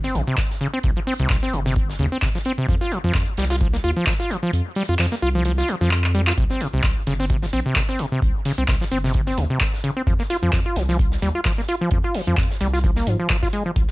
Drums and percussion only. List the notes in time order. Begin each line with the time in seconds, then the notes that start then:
0.04 snare
0.15 closed hi-hat
0.37 kick, snare, clap, closed hi-hat
0.50 snare
0.61 closed hi-hat
0.83 kick, closed hi-hat
1.07 open hi-hat
1.19 closed hi-hat
1.30 kick, snare, clap, closed hi-hat
1.43 snare
1.53 closed hi-hat
1.66 snare
1.76 kick, closed hi-hat
1.90 snare
1.99 closed hi-hat
2.22 kick, snare, clap, closed hi-hat
2.35 snare
2.45 closed hi-hat
2.69 kick, closed hi-hat
2.81 snare
2.92 closed hi-hat
3.14 kick, snare, clap, closed hi-hat
3.37 snare, closed hi-hat
3.50 snare, closed hi-hat
3.61 kick, closed hi-hat
3.73 snare
3.84 closed hi-hat
4.07 kick, snare, clap, closed hi-hat
4.20 snare
4.31 closed hi-hat
4.53 closed hi-hat
4.75 open hi-hat
4.88 closed hi-hat
4.99 snare, clap, closed hi-hat
5.12 snare
5.45 closed hi-hat
5.59 snare
5.68 closed hi-hat
5.82 snare
5.91 clap, closed hi-hat
6.04 clap
6.15 closed hi-hat
6.27 snare, clap
6.38 kick, closed hi-hat
6.50 snare
6.61 closed hi-hat, open hi-hat
6.83 kick, snare, clap, closed hi-hat
7.07 snare, closed hi-hat, open hi-hat
7.19 snare
7.30 kick, closed hi-hat
7.42 snare
7.53 closed hi-hat, open hi-hat
7.76 kick, snare, clap, closed hi-hat
7.89 snare
7.99 closed hi-hat, open hi-hat
8.22 kick, closed hi-hat
8.45 open hi-hat
8.58 closed hi-hat
8.68 kick, snare, clap, closed hi-hat
8.81 snare
8.92 closed hi-hat, open hi-hat
9.05 snare
9.14 kick, closed hi-hat
9.27 snare
9.37 closed hi-hat, open hi-hat
9.60 kick, snare, clap, closed hi-hat
9.74 snare
9.84 closed hi-hat, open hi-hat
10.07 kick, closed hi-hat
10.19 snare
10.30 closed hi-hat, open hi-hat
10.53 kick, snare, clap, closed hi-hat
10.76 snare, closed hi-hat, open hi-hat
10.89 snare
10.99 kick, closed hi-hat
11.12 snare
11.22 closed hi-hat, open hi-hat
11.45 kick, snare, clap, closed hi-hat
11.59 snare
11.68 closed hi-hat, open hi-hat
11.91 kick, closed hi-hat
12.15 open hi-hat
12.27 closed hi-hat
12.37 kick, snare, clap, closed hi-hat
12.51 snare
12.61 closed hi-hat, open hi-hat
12.73 snare
12.84 kick, closed hi-hat
12.96 snare
13.07 closed hi-hat, open hi-hat
13.29 kick, snare, clap, closed hi-hat
13.43 kick, snare
13.53 closed hi-hat, open hi-hat
13.76 kick, closed hi-hat